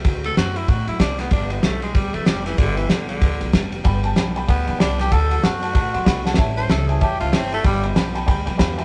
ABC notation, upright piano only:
X:1
M:4/4
L:1/8
Q:"Swing" 1/4=189
K:G
V:1 name="Upright piano"
z8 | z8 | z8 | [dgb] [dga] [dgb] [dgb] [dgb] [dgb] [dgb] [dga] |
[dfa] [dfa] [dfa] [dfa] [dfa] [dfc'] [dfb] [dfa] | [^cea] [cea] [cea] [cea] [cea] [cea] [cea] [cea] | [dgb] [dgb] [dgb] [dgab] [dgb] [dgb] [d=fgb] [degb] |]